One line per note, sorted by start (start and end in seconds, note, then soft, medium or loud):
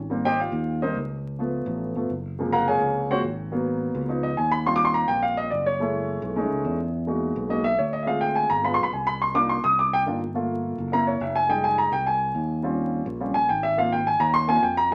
0.00 0.47 G#1 medium
0.10 0.29 G3 medium
0.10 0.30 A#3 medium
0.10 0.30 C4 medium
0.25 0.39 G4 medium
0.25 0.39 C5 medium
0.25 0.39 D#5 medium
0.25 0.39 G5 loud
0.40 0.79 F4 medium
0.40 0.79 F5 medium
0.52 0.92 D#2 medium
0.82 0.95 G3 soft
0.82 0.95 A#3 soft
0.82 0.95 C4 soft
0.82 0.96 D#4 medium
0.82 0.96 A#4 medium
0.82 0.96 C5 medium
0.82 0.96 D#5 medium
0.95 1.61 C#2 medium
1.39 1.94 F3 soft
1.39 1.95 A3 soft
1.39 1.95 B3 medium
1.66 1.93 A1 medium
1.95 2.09 G1 medium
1.95 2.09 F3 soft
1.95 2.09 A3 soft
1.95 2.09 B3 medium
2.10 2.76 F#1 medium
2.39 3.49 C3 medium
2.39 3.09 F3 medium
2.39 3.09 G#3 soft
2.39 3.09 A#3 medium
2.53 2.67 A#4 medium
2.53 2.67 F5 medium
2.53 2.67 F#5 medium
2.53 2.66 A#5 medium
2.68 3.08 G#4 medium
2.68 3.08 C#5 medium
2.68 3.08 F5 medium
2.68 3.07 G#5 medium
2.80 3.21 C#2 medium
3.10 3.23 F3 soft
3.10 3.23 G#3 soft
3.10 3.23 A#3 soft
3.10 3.23 C4 medium
3.10 3.20 F#4 medium
3.10 3.19 C5 medium
3.10 3.19 C#5 medium
3.10 3.19 F#5 medium
3.23 3.89 G#1 medium
3.52 4.06 F#3 medium
3.52 4.06 A#3 soft
3.52 4.07 B3 medium
3.95 4.35 C#2 medium
4.08 4.28 F3 medium
4.08 4.28 B3 medium
4.08 4.28 D#4 medium
4.23 4.37 D#5 medium
4.37 5.03 D#2 medium
4.37 4.51 G#5 medium
4.52 4.66 B5 loud
4.66 5.76 G3 medium
4.66 5.76 C4 medium
4.66 5.77 F4 medium
4.66 4.76 C6 medium
4.76 4.85 D6 loud
4.85 4.94 C6 medium
4.94 5.08 A#5 medium
5.08 5.49 A#1 medium
5.08 5.22 G5 medium
5.23 5.37 F5 medium
5.37 5.51 D#5 loud
5.50 6.17 F#1 medium
5.50 5.65 D5 medium
5.66 6.33 C#5 medium
5.80 6.34 G#3 medium
5.80 6.35 A3 medium
5.80 6.35 E4 medium
6.22 6.49 B1 loud
6.36 6.77 G#3 medium
6.36 6.77 A3 medium
6.36 6.78 C#4 medium
6.36 6.78 D#4 medium
6.50 6.64 C#2 medium
6.65 7.31 E2 medium
7.07 7.48 G#3 soft
7.07 7.48 A#3 soft
7.07 7.49 D#4 soft
7.07 7.49 F#4 medium
7.36 7.76 B1 medium
7.49 7.63 G#3 soft
7.49 7.63 A#3 soft
7.49 7.63 D#4 soft
7.49 7.64 F#4 medium
7.49 7.64 D#5 medium
7.64 7.79 E5 loud
7.79 8.45 D2 medium
7.79 7.93 C#5 medium
7.93 8.07 D#5 medium
8.03 8.61 G#3 medium
8.03 8.05 E5 medium
8.07 8.62 C4 soft
8.07 8.62 F4 medium
8.07 8.22 F5 medium
8.21 8.35 G5 medium
8.35 8.50 G#5 medium
8.50 8.77 G1 medium
8.50 8.64 A#5 medium
8.63 8.83 G#3 medium
8.63 8.83 B3 medium
8.63 8.84 F4 medium
8.63 8.74 B5 medium
8.74 8.92 B1 medium
8.74 8.84 C6 medium
8.83 8.93 B5 medium
8.92 9.59 C2 medium
8.92 9.07 G#5 medium
9.07 9.21 B5 loud
9.22 9.36 C6 medium
9.34 9.54 A#3 medium
9.34 9.55 D4 soft
9.34 9.55 D#4 soft
9.34 9.55 F4 medium
9.34 9.49 D6 loud
9.49 9.64 C6 medium
9.64 10.04 C2 medium
9.64 9.78 D#6 loud
9.79 9.93 D6 medium
9.93 10.02 G5 loud
10.06 10.73 G1 medium
10.06 10.20 A#3 soft
10.06 10.20 D4 soft
10.06 10.20 D#4 soft
10.06 10.21 F4 medium
10.34 10.89 A3 medium
10.34 10.90 A#3 soft
10.34 10.90 F4 medium
10.78 11.18 F#1 medium
10.92 11.12 A#3 medium
10.92 11.12 C4 medium
10.92 11.12 E4 medium
10.92 11.07 A#5 medium
11.07 11.21 C#5 medium
11.20 11.87 F1 medium
11.20 11.35 E5 medium
11.36 11.49 G#5 medium
11.49 11.90 G3 medium
11.49 11.90 G#3 soft
11.49 11.90 D#4 medium
11.49 11.64 G5 medium
11.64 11.78 G#5 medium
11.78 11.92 A#5 medium
11.92 12.32 C2 medium
11.92 12.06 G5 medium
12.07 12.60 G#5 medium
12.35 13.01 D#2 medium
12.63 13.04 G3 medium
12.63 13.04 C4 medium
12.63 13.04 C#4 medium
12.63 13.05 F4 medium
13.06 13.33 A#1 loud
13.20 13.33 G3 medium
13.20 13.33 C4 soft
13.20 13.34 C#4 soft
13.20 13.34 F4 medium
13.34 13.48 A#1 medium
13.34 13.48 G#5 medium
13.49 14.15 G#1 medium
13.49 13.63 G5 medium
13.63 13.77 E5 loud
13.77 13.97 A#3 medium
13.77 13.97 C4 medium
13.77 13.97 F4 medium
13.77 13.92 F5 medium
13.92 14.06 G5 medium
14.07 14.20 G#5 medium
14.20 14.60 D#2 loud
14.20 14.34 A#5 medium
14.34 14.48 C6 loud
14.48 14.61 A#3 medium
14.48 14.62 C4 soft
14.48 14.61 F4 medium
14.48 14.63 G#5 loud
14.63 14.94 F2 medium
14.63 14.77 G5 medium
14.77 14.91 A#5 loud
14.91 14.94 G3 medium